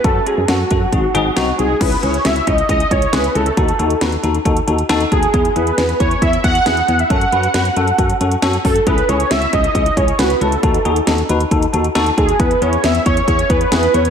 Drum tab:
CC |----------------|x---------------|----------------|----------------|
HH |x-x-x-x-x-x-x-x-|xxxxxxxxxxxxxxxx|xxxxxxxxxxxxxxxx|xxxxxxxxxxxxxxxx|
SD |----o-------o---|----o-------o---|----o-------o---|----o-------o---|
BD |o-----o-o-------|o-----o-o-o-----|o-------o-----o-|o-----o-o-o-----|

CC |----------------|----------------|----------------|----------------|
HH |xxxxxxxxxxxxxxox|xxxxxxxxxxxxxxxx|xxxxxxxxxxxxxxxx|xxxxxxxxxxxxxxxx|
SD |----o-------o---|----o-------o---|----o-------o---|----o-------o---|
BD |o-------o-----o-|o-----o-o-o-----|o-------o-----o-|o-----o-o-o-----|